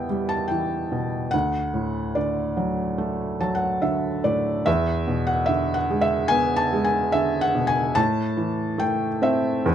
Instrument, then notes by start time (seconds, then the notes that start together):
felt piano
Already playing: E2 B2 E3 G3 B3 E5 F#5 G5
0.10 G3
0.29 A5
0.48 E3 G5
0.92 B2
1.31 D2 F#5
1.74 A2
2.15 D3 D5
2.57 F#3
2.98 A3
3.41 F#3 A5
3.55 F#5
3.82 D3 E5
4.24 A2 D5
4.66 E2 E5
5.08 B2
5.27 F#5
5.46 D3 E5
5.74 F#5
5.91 G#3
6.01 E5
6.28 B3 G#5
6.56 A5
6.73 G#3
6.84 G#5
7.12 D3 E5
7.41 F#5
7.55 B2
7.67 G#5
7.95 A2 A5
8.37 E3
8.78 A3 G5
9.22 C4 E5
9.66 E2